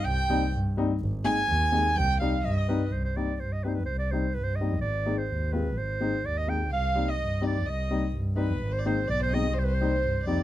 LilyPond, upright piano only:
\new Staff \with { instrumentName = "Upright piano" } { \time 2/4 \key c \minor \tempo 4 = 126 r8 <g c' ees'>16 r8. <g c' ees'>16 r16 | r8 <aes c' ees'>16 r8. <aes c' ees'>16 r16 | r8 <g c' ees'>16 r8. <g c' ees'>16 r16 | r8 <g c' ees'>16 r8. <g c' ees'>16 r16 |
r8 <g c' ees'>16 r8. <g c' ees'>16 r16 | r8 <aes c' ees'>16 r8. <aes c' f'>16 r16 | r8 <aes c' ees'>16 r8. <aes c' ees'>16 r16 | r8 <g c' ees'>16 r8. <g c' ees'>16 r16 |
r8 <g c' ees'>16 r8. <g c' ees'>16 r16 | r8 <aes c' ees'>16 r8. <aes c' ees'>16 r16 | r8 <g c' ees'>16 r8. <g c' ees'>16 r16 | }